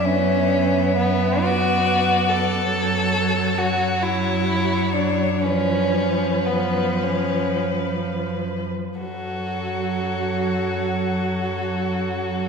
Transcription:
Already playing: F#2 E5
0.03 B3 C#4
0.97 B3
1.41 F#4 D5
2.29 A4
2.71 F#2 F#3 C#5
3.58 F#4
4.02 E4
4.95 D4
5.42 F3 C#4 B4
6.46 B3
7.04 C#4
8.99 F#2 F#3 F#4 A4

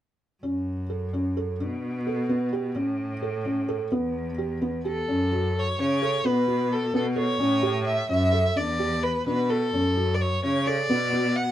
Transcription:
0.43 F#2 C#4
0.90 A4
1.13 C#4
1.37 A4
1.60 B2 D4
2.07 A4
2.29 B3
2.53 G4
2.76 A2 C#4
3.22 A4
3.45 C#4
3.69 A4
3.92 E2 B3
4.38 G4
4.62 B3
4.85 G4 A4
5.08 F#2 C#4
5.32 F#4
5.59 C#5
5.79 C#3 C#4 C#5
6.02 A4
6.25 B2 B3 B4
6.48 F#4
6.73 A4
6.94 B2 B3 A4
7.16 A4 C#5
7.40 A2 C#4
7.63 G4
7.87 E5
8.09 F#2 C#4 E5
8.32 A4
8.56 E2 D4 D5
8.79 G4
9.03 B4
9.27 B2 D4 B4
9.50 A4
9.73 F#2 C#4
9.97 F#4
10.14 D5
10.22 C#5
10.43 C#3 C#4 C#5
10.67 A4 D5
10.90 B2 B3
11.13 F#4
11.37 F#5

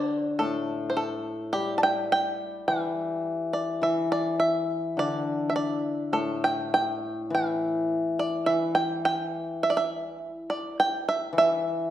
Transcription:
Already playing: D3 D5
0.39 A2 A4
0.90 C5
0.97 A4
1.53 G3 G4
1.78 A5
1.83 G5
2.12 G5
2.68 E3 E5
3.53 D5
3.82 E3 E5
4.12 D5
4.40 E5
4.97 D3 D5
5.50 E5
5.56 D5
6.13 A2 A4
6.44 G5
6.74 G5
7.30 E3
7.35 E5
8.19 D5
8.46 E3 E5
8.75 G5
9.05 G5
9.63 E5
9.70 D5
9.77 E5
10.50 D5
10.80 G5
11.09 E5
11.33 E3
11.38 E5

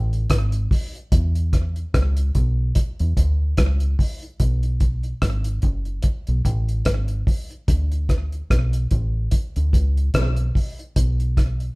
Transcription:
Already playing: A1
0.13 closed hi-hat
0.30 G#1, kick, cross-stick, closed hi-hat
0.52 closed hi-hat
0.71 kick, open hi-hat
0.95 closed hi-hat
1.12 E2, kick, closed hi-hat
1.35 closed hi-hat
1.53 kick, cross-stick, closed hi-hat
1.76 closed hi-hat
1.94 C#2, kick, cross-stick, closed hi-hat
2.17 closed hi-hat
2.35 B1, kick, closed hi-hat
2.75 kick, closed hi-hat
2.99 E2, closed hi-hat
3.17 D2, kick, closed hi-hat
3.57 C#2, kick, cross-stick, closed hi-hat
3.80 closed hi-hat
3.99 kick, open hi-hat
4.23 closed hi-hat
4.40 B1, kick, closed hi-hat
4.63 closed hi-hat
4.80 kick, closed hi-hat
5.03 closed hi-hat
5.22 G#1, kick, cross-stick, closed hi-hat
5.44 closed hi-hat
5.62 F#1, kick, closed hi-hat
5.85 closed hi-hat
6.03 kick, closed hi-hat
6.27 B1, closed hi-hat
6.45 A1, kick, closed hi-hat
6.69 closed hi-hat
6.85 G#1, kick, cross-stick, closed hi-hat
7.08 closed hi-hat
7.27 kick, open hi-hat
7.51 closed hi-hat
7.68 D2, kick, closed hi-hat
7.92 closed hi-hat
8.09 kick, cross-stick, closed hi-hat
8.32 closed hi-hat
8.50 B1, kick, cross-stick, closed hi-hat
8.73 closed hi-hat
8.91 A1, kick, closed hi-hat
9.31 kick, closed hi-hat
9.56 D2, closed hi-hat
9.73 C#2, kick, closed hi-hat
9.97 closed hi-hat
10.14 B1, kick, cross-stick, closed hi-hat
10.36 closed hi-hat
10.55 kick, open hi-hat
10.79 closed hi-hat
10.96 B1, kick, closed hi-hat
11.20 closed hi-hat
11.37 kick, cross-stick, closed hi-hat
11.60 closed hi-hat

